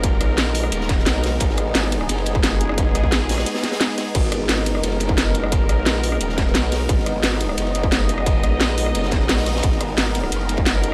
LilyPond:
<<
  \new Staff \with { instrumentName = "Analog synth pad" } { \time 4/4 \key gis \minor \tempo 4 = 175 << { ais'1 | gis'1~ | gis'1 | ais'1~ |
ais'1 | dis''1~ | dis''1 | ais'1 | } \\ { <gis b dis'>1~ | <gis b dis'>1~ | <gis b dis'>1~ | <gis b dis'>1~ |
<gis b dis'>1~ | <gis b dis'>1~ | <gis b dis'>1~ | <gis b dis'>1 | } >> }
  \new Staff \with { instrumentName = "Wobble bass" } { \clef bass \time 4/4 \key gis \minor fis,,8 ais,,4. dis,,4 b,,4 | gis,,4 gis,,4 fis,,2~ | fis,,8 ais,,4. r2 | gis,,4 gis,,4 fis,,2~ |
fis,,8 ais,,4. dis,,4 b,,4 | gis,,4 gis,,4 fis,,2~ | fis,,8 ais,,4. fis,,4 ais,,4 | gis,,4 gis,,4 fis,,2 | }
  \new DrumStaff \with { instrumentName = "Drums" } \drummode { \time 4/4 <hh bd cymr>8 <hh cymr ss>8 <hh cymr sn>8 <hho cymr>16 ss16 <hh cymr>16 sn16 <hh bd cymr sn>16 sn16 <hh cymr sn>8 <hh hho sn>8 | <hh bd cymr>16 sn16 <hh cymr ss>8 <hh hho sn>16 sn16 <hh cymr>16 ss16 <hh cymr>16 cymr16 <hh cymr>16 <bd cymr>16 <hh cymr sn>8 hh16 ss16 | <hh bd cymr>8 <hh cymr ss>16 bd16 <hh cymr sn>8 <hho sn>16 <hho ss sn>16 <hh hho sn>16 <hho sn>16 <hh hho sn>16 <hho sn>16 <hh cymr sn>8 <hh hho sn>8 | <cymc hh bd cymr>16 sn16 <hh cymr ss>8 <hh hho sn>16 sn16 <hh cymr>16 ss16 <hh cymr>16 cymr16 <hh cymr>16 <bd cymr>16 <hh cymr sn>8 <hh cymr>16 ss16 |
<hh bd cymr>8 <hh cymr ss>8 <hh cymr sn>8 <hho cymr>16 ss16 <hh cymr>16 sn16 <hh bd cymr sn>16 sn16 <hh cymr sn>8 <hh hho sn>8 | <hh bd cymr>16 sn16 <hh cymr ss>8 <hh hho sn>16 sn16 <hh cymr>16 ss16 <hh cymr>16 cymr16 <hh cymr>16 <bd cymr>16 <hh cymr sn>8 <hh cymr>16 ss16 | <hh bd cymr>8 <hh cymr ss>8 <hh cymr sn>8 <hho cymr>16 ss16 <hh cymr>16 sn16 <hh bd cymr sn>16 sn16 <hh hho sn>16 <hho sn>16 <hh hho sn>16 <hho sn>16 | <hh bd cymr>16 sn16 <hh cymr ss>8 <hh hho sn>16 sn16 <hh cymr>16 ss16 <hh cymr>16 cymr16 <hh cymr>16 <bd cymr>16 <hh cymr sn>8 <hh cymr>8 | }
>>